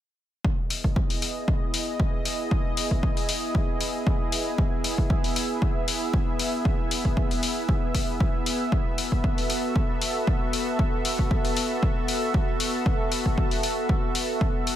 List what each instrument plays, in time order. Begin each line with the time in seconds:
0.44 analog synth pad B3 E4 G#4 D#5, kick
0.70 open hi-hat
0.84 kick
0.96 kick
1.10 open hi-hat
1.22 open hi-hat
1.48 kick
1.74 open hi-hat
2.00 kick
2.25 open hi-hat
2.51 kick
2.77 open hi-hat
2.91 kick
3.03 kick
3.17 open hi-hat
3.29 open hi-hat
3.55 kick
3.81 open hi-hat
4.07 kick
4.32 open hi-hat
4.58 analog synth pad E5, kick
4.84 open hi-hat
4.98 kick
5.10 kick
5.24 open hi-hat
5.36 open hi-hat
5.62 kick
5.88 open hi-hat
6.14 kick
6.39 open hi-hat
6.65 kick
6.91 open hi-hat
7.05 kick
7.17 kick
7.31 open hi-hat
7.43 open hi-hat
7.69 kick
7.95 kick, open hi-hat
8.20 kick
8.46 open hi-hat
8.72 analog synth pad F#4 A4, kick
8.98 open hi-hat
9.12 kick
9.24 kick
9.38 open hi-hat
9.50 open hi-hat
9.76 kick
10.02 open hi-hat
10.27 kick
10.53 open hi-hat
10.79 kick
11.05 open hi-hat
11.19 kick
11.31 kick
11.45 open hi-hat
11.57 open hi-hat
11.83 kick
12.08 open hi-hat
12.34 kick
12.60 open hi-hat
12.86 kick
13.12 open hi-hat
13.26 kick
13.38 kick
13.51 open hi-hat
13.63 open hi-hat
13.89 kick
14.15 open hi-hat
14.41 kick
14.67 open hi-hat